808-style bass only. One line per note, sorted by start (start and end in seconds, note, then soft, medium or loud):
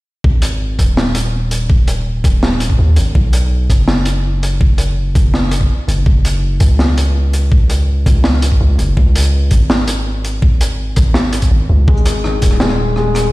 0.24 0.78 G#1 loud
0.79 2.23 D#1 medium
2.24 2.78 D#1 medium
2.79 2.96 D#2 medium
2.97 3.14 G#1 medium
3.15 3.69 B1 medium
3.70 5.14 F#1 medium
5.15 5.69 F#1 medium
5.88 6.05 F#1 loud
6.06 6.60 F#1 loud
6.61 8.05 C#2 medium
8.06 8.60 C#2 medium
8.61 8.77 C#2 medium
8.78 8.95 F#1 medium
8.97 9.51 C#2 medium
9.52 10.96 G#1 medium
10.97 11.50 G#1 medium
11.51 11.68 G#1 medium
11.69 11.86 C#2 medium
11.88 12.41 G#1 loud
12.42 13.32 D#1 medium